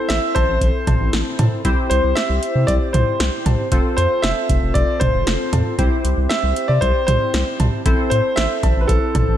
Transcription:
0.00 1.61 C4 medium
0.00 1.61 E4 medium
0.00 1.61 A4 medium
0.00 1.61 C5 medium
0.09 0.20 A1 loud
0.09 0.36 E5 loud
0.09 snare loud
0.09 closed hi-hat medium
0.35 0.45 A1 loud
0.35 1.09 C5 loud
0.35 kick loud
0.35 closed hi-hat medium
0.35 cowbell medium
0.48 0.58 A1 loud
0.61 0.71 A1 loud
0.61 kick medium
0.61 closed hi-hat medium
0.87 0.97 A1 loud
0.87 kick medium
0.87 closed hi-hat medium
0.87 mid tom medium
0.87 cowbell medium
1.00 1.10 A1 loud
1.13 1.23 A1 loud
1.13 snare loud
1.13 closed hi-hat medium
1.39 1.49 A2 loud
1.39 closed hi-hat medium
1.39 mid tom medium
1.39 cowbell medium
1.65 1.75 C2 loud
1.65 3.68 C4 medium
1.65 3.68 E4 medium
1.65 3.68 G4 medium
1.65 3.68 C5 medium
1.65 kick loud
1.65 closed hi-hat medium
1.90 2.01 C2 loud
1.90 2.17 C5 medium
1.90 closed hi-hat medium
2.04 2.14 C2 loud
2.15 2.69 E5 loud
2.15 snare loud
2.15 closed hi-hat medium
2.30 2.39 C2 medium
2.43 closed hi-hat medium
2.55 2.65 C3 loud
2.67 2.78 C2 loud
2.67 2.73 D5 loud
2.67 kick loud
2.67 closed hi-hat medium
2.93 3.04 C2 loud
2.93 3.42 C5 medium
2.93 closed hi-hat medium
2.93 mid tom loud
3.20 3.30 C2 loud
3.20 snare loud
3.20 closed hi-hat medium
3.46 3.56 C2 loud
3.46 closed hi-hat medium
3.46 mid tom medium
3.46 cowbell medium
3.72 3.82 F1 loud
3.72 5.75 C4 medium
3.72 5.75 F4 medium
3.72 5.75 A4 medium
3.72 5.75 C5 medium
3.72 kick loud
3.72 closed hi-hat medium
3.97 4.07 F2 loud
3.97 4.24 C5 medium
3.97 closed hi-hat medium
4.22 4.33 F1 loud
4.22 4.76 E5 loud
4.22 snare loud
4.22 closed hi-hat medium
4.49 4.59 F1 loud
4.49 kick loud
4.49 closed hi-hat medium
4.62 4.72 F1 loud
4.74 4.85 F1 loud
4.74 5.01 D5 loud
4.74 kick medium
4.74 closed hi-hat medium
5.00 5.11 F1 loud
5.00 5.49 C5 loud
5.00 kick medium
5.00 closed hi-hat medium
5.00 mid tom loud
5.14 5.24 F1 loud
5.27 5.37 F1 loud
5.27 snare loud
5.27 closed hi-hat medium
5.53 5.63 F2 loud
5.53 closed hi-hat medium
5.53 mid tom medium
5.53 cowbell medium
5.79 5.89 C2 loud
5.79 7.82 C4 medium
5.79 7.82 E4 medium
5.79 7.82 G4 medium
5.79 7.82 C5 medium
5.79 kick loud
5.79 closed hi-hat medium
6.05 6.14 C2 medium
6.05 closed hi-hat medium
6.17 6.27 C2 loud
6.29 6.70 E5 loud
6.29 snare loud
6.29 closed hi-hat medium
6.43 6.53 C2 loud
6.56 closed hi-hat medium
6.68 6.79 C3 loud
6.68 6.82 D5 medium
6.81 6.92 C2 loud
6.81 7.05 C5 loud
6.81 kick medium
6.81 closed hi-hat medium
7.07 7.18 C2 loud
7.07 7.55 C5 loud
7.07 closed hi-hat medium
7.07 mid tom medium
7.34 7.44 C2 loud
7.34 snare loud
7.34 closed hi-hat medium
7.60 7.70 C2 loud
7.60 closed hi-hat medium
7.60 mid tom medium
7.60 cowbell medium
7.86 7.95 A1 loud
7.86 9.37 C4 medium
7.86 9.37 E4 medium
7.86 9.37 A4 medium
7.86 9.37 C5 medium
7.86 kick loud
7.86 closed hi-hat medium
8.10 8.21 A2 loud
8.10 8.37 C5 medium
8.10 closed hi-hat medium
8.36 8.47 A1 loud
8.36 8.83 E5 loud
8.36 snare loud
8.36 closed hi-hat medium
8.63 8.73 A1 loud
8.63 kick loud
8.63 closed hi-hat medium
8.63 cowbell medium
8.77 8.86 A1 loud
8.81 8.88 B4 medium
8.88 8.99 A1 loud
8.88 9.37 A4 medium
8.88 kick medium
8.88 closed hi-hat medium
9.15 9.25 A1 loud
9.15 kick medium
9.15 closed hi-hat medium
9.15 mid tom loud
9.15 cowbell medium
9.28 9.37 A1 loud

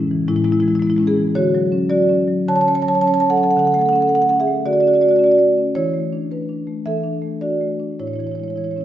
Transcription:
0.00 0.26 A2 medium
0.00 0.26 G#3 medium
0.00 0.21 C#4 medium
0.00 0.27 E4 loud
0.11 0.40 E3 medium
0.28 1.33 A2 medium
0.28 0.36 G#3 medium
0.28 0.36 E4 loud
0.36 0.45 G#3 medium
0.36 0.44 E4 loud
0.44 0.53 G#3 medium
0.44 0.75 B3 medium
0.44 0.52 E4 loud
0.52 0.62 G#3 medium
0.52 0.60 E4 loud
0.60 0.93 E3 medium
0.60 0.70 G#3 medium
0.60 0.68 E4 loud
0.68 0.79 G#3 medium
0.68 0.75 E4 loud
0.75 0.82 E4 loud
0.79 0.87 G#3 medium
0.79 1.07 B3 medium
0.79 0.90 E4 loud
0.87 0.96 G#3 medium
0.87 0.98 E4 loud
0.96 1.05 G#3 medium
0.96 1.29 C#4 medium
0.96 1.06 E4 medium
1.07 1.34 B3 medium
1.07 1.34 G#4 loud
1.17 1.36 E3 medium
1.35 2.43 D3 medium
1.35 1.87 F#4 loud
1.35 1.88 C#5 loud
1.55 1.83 F#3 medium
1.72 2.01 C#4 medium
1.89 2.20 F#3 medium
1.89 2.43 F#4 medium
1.89 2.44 D5 loud
2.09 2.39 C#4 medium
2.28 2.58 F#3 medium
2.48 3.53 D3 medium
2.48 2.55 C#5 loud
2.48 2.56 A5 loud
2.55 2.61 C#5 medium
2.55 2.61 A5 loud
2.61 2.68 C#5 medium
2.61 2.68 A5 loud
2.65 2.94 C#4 medium
2.65 2.75 C#5 medium
2.65 2.75 A5 loud
2.75 2.82 C#5 medium
2.75 2.82 A5 loud
2.82 3.13 F#3 medium
2.82 2.88 C#5 medium
2.82 2.88 A5 loud
2.88 2.94 C#5 medium
2.88 2.95 A5 loud
2.94 3.01 C#5 medium
2.94 3.01 A5 loud
3.01 3.31 C#4 medium
3.01 3.08 C#5 medium
3.01 3.07 A5 loud
3.07 3.14 C#5 medium
3.07 3.14 A5 loud
3.14 3.22 C#5 medium
3.14 3.20 A5 loud
3.20 3.50 F#3 medium
3.20 3.25 C#5 medium
3.20 3.26 A5 loud
3.30 3.36 A4 medium
3.30 3.38 F#5 loud
3.36 3.57 C#4 medium
3.36 3.43 A4 medium
3.36 3.44 F#5 medium
3.43 3.51 A4 medium
3.43 3.51 F#5 loud
3.51 3.58 A4 medium
3.51 3.59 F#5 loud
3.57 4.62 D3 medium
3.57 3.65 A4 medium
3.57 3.67 F#5 loud
3.65 3.72 A4 medium
3.65 3.74 F#5 loud
3.72 4.03 A3 medium
3.72 3.79 A4 medium
3.72 3.81 F#5 loud
3.79 3.86 A4 medium
3.79 3.89 F#5 medium
3.86 3.93 A4 medium
3.86 3.96 F#5 loud
3.93 4.21 C#4 medium
3.93 4.01 A4 medium
3.93 4.02 F#5 medium
4.01 4.08 A4 medium
4.01 4.09 F#5 loud
4.08 4.40 A3 medium
4.08 4.15 A4 medium
4.08 4.15 F#5 medium
4.15 4.23 A4 medium
4.15 4.22 F#5 loud
4.22 4.30 A4 medium
4.22 4.29 F#5 loud
4.29 4.58 C#4 medium
4.29 4.34 A4 medium
4.29 4.34 F#5 loud
4.40 4.64 G#4 medium
4.40 4.65 E5 loud
4.47 4.76 A3 medium
4.65 5.72 D3 medium
4.65 4.73 F#4 medium
4.65 4.73 D5 loud
4.73 4.81 F#4 medium
4.73 4.80 D5 medium
4.80 5.12 C#4 medium
4.80 4.88 F#4 medium
4.80 4.87 D5 medium
4.87 4.95 F#4 medium
4.87 4.94 D5 medium
4.94 5.03 F#4 medium
4.94 5.01 D5 medium
5.01 5.30 A3 medium
5.01 5.11 F#4 medium
5.01 5.08 D5 medium
5.08 5.19 F#4 medium
5.08 5.16 D5 medium
5.16 5.48 C#4 medium
5.16 5.26 F#4 medium
5.16 5.24 D5 medium
5.24 5.35 F#4 medium
5.24 5.31 D5 medium
5.31 5.43 F#4 medium
5.31 5.39 D5 medium
5.38 5.67 A3 medium
5.38 5.44 D5 medium
5.58 5.75 C#4 medium
5.75 6.83 E3 medium
5.75 6.27 E4 medium
5.75 6.28 C#5 loud
5.94 6.23 A3 medium
6.13 6.32 D4 medium
6.31 6.60 A3 soft
6.31 6.48 D4 soft
6.31 6.84 B4 medium
6.49 6.78 D4 medium
6.67 6.97 A3 medium
6.86 7.97 E3 medium
6.86 7.39 A4 medium
6.86 7.40 E5 medium
7.04 7.34 D4 medium
7.22 7.53 A3 soft
7.41 7.72 D4 medium
7.41 7.96 F#4 medium
7.41 7.97 D5 medium
7.61 7.92 A3 soft
7.80 7.99 D4 soft
8.00 8.85 A2 medium
8.00 8.08 E4 medium
8.00 8.07 C#5 medium
8.07 8.16 E4 medium
8.07 8.14 C#5 medium
8.14 8.24 E4 medium
8.14 8.20 C#5 medium
8.19 8.50 E3 soft
8.19 8.27 C#5 medium
8.24 8.31 E4 medium
8.24 8.35 C#5 medium
8.31 8.40 E4 medium
8.31 8.43 C#5 medium
8.38 8.69 G#3 soft
8.38 8.48 E4 soft
8.43 8.50 C#5 medium
8.48 8.56 E4 soft
8.48 8.57 C#5 medium
8.56 8.85 E3 soft
8.56 8.64 E4 soft
8.56 8.64 C#5 medium
8.64 8.73 E4 medium
8.64 8.71 C#5 medium
8.71 8.81 E4 soft
8.71 8.78 C#5 medium
8.76 8.85 C#4 soft
8.76 8.85 C#5 medium
8.81 8.85 E4 medium

